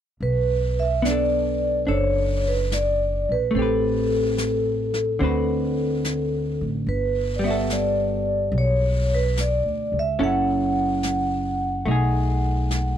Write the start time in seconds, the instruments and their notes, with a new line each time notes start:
0.20 upright bass B1, vibraphone B4, brush sweep
0.80 vibraphone E5
1.02 hollow-body jazz guitar B3 D4, vibraphone D5, snare, hi-hat pedal
1.10 hollow-body jazz guitar A4
1.86 upright bass F#1, hollow-body jazz guitar D4 A4, vibraphone C5 C#5, brush sweep
2.48 vibraphone B4
2.72 vibraphone D5, snare, hi-hat pedal
3.29 upright bass A#1, vibraphone B4
3.51 hollow-body jazz guitar A3
3.55 upright bass A1, hollow-body jazz guitar C4 G4, vibraphone A4, brush sweep
3.62 hollow-body jazz guitar B4
4.38 snare, hi-hat pedal
4.94 snare
5.19 upright bass D2, hollow-body jazz guitar D3 C4 F#4, brush sweep
5.24 hollow-body jazz guitar B4
6.05 snare, hi-hat pedal
6.61 upright bass A1
6.87 upright bass G1, vibraphone B4, brush sweep
7.36 hollow-body jazz guitar G3, vibraphone D5
7.44 hollow-body jazz guitar B3 F#4, vibraphone E5
7.51 hollow-body jazz guitar A4
7.70 vibraphone D5, snare, hi-hat pedal
8.52 upright bass B1, brush sweep
8.58 vibraphone C#5
9.15 vibraphone B4
9.37 vibraphone D5, snare, hi-hat pedal
9.63 upright bass D2
9.92 upright bass C#2
9.99 vibraphone E5
10.19 upright bass F#1, hollow-body jazz guitar F#3 C#4 E4 A4, brush sweep
10.24 vibraphone F#5
11.03 snare, hi-hat pedal
11.85 upright bass B1, hollow-body jazz guitar A3 D#4, brush sweep
11.91 hollow-body jazz guitar G#4
12.71 snare, hi-hat pedal